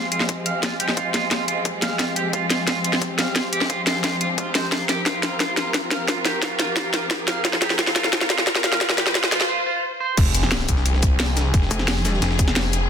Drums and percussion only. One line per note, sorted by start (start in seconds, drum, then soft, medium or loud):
0.12 closed hi-hat medium
0.20 snare soft
0.29 kick loud
0.29 closed hi-hat medium
0.46 closed hi-hat medium
0.63 kick medium
0.63 snare medium
0.63 closed hi-hat medium
0.80 closed hi-hat medium
0.88 snare soft
0.97 kick loud
0.97 closed hi-hat medium
1.14 snare medium
1.14 closed hi-hat medium
1.31 kick loud
1.31 snare medium
1.31 closed hi-hat medium
1.48 closed hi-hat medium
1.65 kick medium
1.65 closed hi-hat medium
1.82 snare medium
1.82 closed hi-hat medium
1.99 kick medium
1.99 snare medium
1.99 closed hi-hat medium
2.16 closed hi-hat medium
2.33 kick loud
2.33 closed hi-hat medium
2.50 snare medium
2.50 closed hi-hat medium
2.67 kick loud
2.67 snare medium
2.67 closed hi-hat medium
2.84 closed hi-hat medium
2.93 snare medium
3.02 kick loud
3.02 closed hi-hat medium
3.19 snare medium
3.19 closed hi-hat medium
3.36 kick loud
3.36 snare medium
3.36 closed hi-hat medium
3.53 closed hi-hat medium
3.61 snare medium
3.70 kick loud
3.70 closed hi-hat medium
3.87 snare medium
3.87 closed hi-hat medium
4.04 kick loud
4.04 snare medium
4.04 closed hi-hat medium
4.21 closed hi-hat medium
4.38 kick medium
4.38 closed hi-hat medium
4.55 snare medium
4.55 closed hi-hat medium
4.72 kick loud
4.72 snare medium
4.72 closed hi-hat medium
4.89 snare medium
4.89 closed hi-hat medium
5.06 kick loud
5.06 snare medium
5.06 closed hi-hat medium
5.23 snare medium
5.23 closed hi-hat medium
5.40 kick loud
5.40 snare medium
5.40 closed hi-hat medium
5.57 snare medium
5.57 closed hi-hat medium
5.74 kick loud
5.74 snare medium
5.74 closed hi-hat medium
5.91 snare medium
5.91 closed hi-hat medium
6.08 kick loud
6.08 snare medium
6.08 closed hi-hat medium
6.25 snare medium
6.25 closed hi-hat medium
6.42 kick loud
6.42 snare medium
6.42 closed hi-hat medium
6.59 snare medium
6.59 closed hi-hat medium
6.76 kick loud
6.76 snare medium
6.76 closed hi-hat medium
6.94 snare medium
6.94 closed hi-hat medium
7.11 kick loud
7.11 snare medium
7.11 closed hi-hat medium
7.28 snare medium
7.28 closed hi-hat medium
7.45 kick loud
7.45 snare medium
7.45 closed hi-hat medium
7.53 snare medium
7.62 snare medium
7.62 closed hi-hat loud
7.70 snare medium
7.79 kick loud
7.79 snare medium
7.79 closed hi-hat medium
7.87 snare medium
7.96 snare medium
7.96 closed hi-hat loud
8.04 snare medium
8.13 kick loud
8.13 snare loud
8.13 closed hi-hat medium
8.21 snare medium
8.30 snare loud
8.30 closed hi-hat loud
8.38 snare medium
8.47 kick loud
8.47 snare loud
8.47 closed hi-hat medium
8.55 snare medium
8.64 snare loud
8.64 closed hi-hat loud
8.72 snare medium
8.81 kick loud
8.81 snare loud
8.81 closed hi-hat medium
8.90 snare medium
8.98 snare loud
8.98 closed hi-hat loud
9.07 snare medium
9.15 kick loud
9.15 snare loud
9.15 closed hi-hat medium
9.24 snare medium
9.32 snare loud
9.32 closed hi-hat loud
9.41 snare medium
10.17 kick loud
10.17 closed hi-hat medium
10.17 crash loud
10.35 closed hi-hat medium
10.35 closed hi-hat loud
10.35 shaker medium
10.43 snare soft
10.52 snare loud
10.52 closed hi-hat medium
10.60 snare soft
10.69 kick medium
10.69 closed hi-hat loud
10.69 closed hi-hat medium
10.69 shaker medium
10.77 snare soft
10.86 closed hi-hat medium
10.94 snare soft
11.03 kick loud
11.03 closed hi-hat loud
11.03 closed hi-hat medium
11.03 shaker medium
11.20 snare loud
11.20 closed hi-hat medium
11.37 snare loud
11.37 closed hi-hat medium
11.37 closed hi-hat loud
11.37 shaker medium
11.54 kick loud
11.54 closed hi-hat medium
11.62 snare soft
11.71 closed hi-hat medium
11.71 shaker medium
11.79 snare soft
11.88 snare loud
11.88 closed hi-hat medium
11.88 open hi-hat medium
11.96 snare medium
12.05 snare loud
12.05 closed hi-hat medium
12.05 open hi-hat medium
12.05 shaker medium
12.13 snare soft
12.22 snare loud
12.22 closed hi-hat medium
12.30 snare medium
12.39 kick loud
12.39 closed hi-hat medium
12.39 shaker medium
12.48 snare soft
12.48 snare medium
12.56 snare loud
12.56 closed hi-hat medium
12.65 snare soft
12.73 snare soft
12.73 closed hi-hat medium
12.73 shaker medium